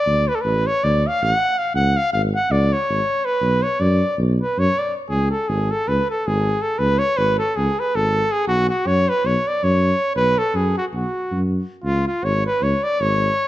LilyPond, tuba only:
\new Staff \with { instrumentName = "Tuba" } { \clef bass \time 9/8 \tempo 4. = 107 d,4 a,,4 d,4 a,,8 r4 | cis,4 gis,,4 cis,4 gis,,8 r4 | b,,4 fis,4 b,,4 fis,8 r4 | cis,4 gis,,4 cis,8 r8 gis,,4. |
cis,4 gis,,4 cis,8 r8 gis,,4. | b,,4 fis,4 b,,8 r8 fis,4. | b,,4 fis,4 b,,8 r8 fis,4. | cis,4 gis,,4 cis,8 r8 gis,,4. | }